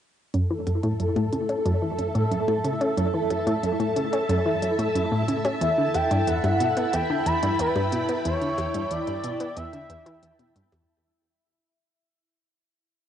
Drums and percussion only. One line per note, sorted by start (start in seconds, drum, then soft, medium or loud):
0.34 closed hi-hat medium
0.67 closed hi-hat medium
0.67 percussion blips medium
0.83 closed hi-hat soft
1.00 closed hi-hat medium
1.16 closed hi-hat soft
1.16 percussion blips medium
1.33 closed hi-hat medium
1.49 closed hi-hat soft
1.66 closed hi-hat medium
1.99 closed hi-hat medium
2.15 closed hi-hat soft
2.32 closed hi-hat medium
2.48 percussion blips medium
2.65 closed hi-hat medium
2.81 closed hi-hat soft
2.98 closed hi-hat medium
3.31 closed hi-hat medium
3.31 percussion blips medium
3.47 closed hi-hat soft
3.64 closed hi-hat medium
3.80 closed hi-hat soft
3.96 closed hi-hat medium
4.13 closed hi-hat medium
4.29 closed hi-hat medium
4.62 closed hi-hat medium
4.79 closed hi-hat soft
4.95 closed hi-hat medium
5.28 closed hi-hat medium
5.45 closed hi-hat soft
5.45 percussion blips medium
5.61 closed hi-hat medium
5.94 closed hi-hat medium
5.94 percussion blips medium
6.11 closed hi-hat medium
6.27 closed hi-hat medium
6.44 closed hi-hat soft
6.44 percussion blips medium
6.60 closed hi-hat medium
6.77 closed hi-hat medium
6.93 closed hi-hat medium
7.26 closed hi-hat medium
7.43 closed hi-hat medium
7.59 closed hi-hat medium
7.76 percussion blips medium
7.92 closed hi-hat medium
8.09 closed hi-hat soft
8.25 closed hi-hat medium
8.41 closed hi-hat soft
8.58 closed hi-hat medium
8.58 percussion blips medium
8.74 closed hi-hat medium
8.91 closed hi-hat medium
9.08 closed hi-hat soft
9.24 closed hi-hat medium
9.40 closed hi-hat medium
9.57 closed hi-hat medium
9.73 closed hi-hat soft
9.90 closed hi-hat medium
10.06 closed hi-hat soft
10.23 closed hi-hat medium
10.39 closed hi-hat soft
10.56 closed hi-hat medium
10.72 closed hi-hat medium
10.72 percussion blips medium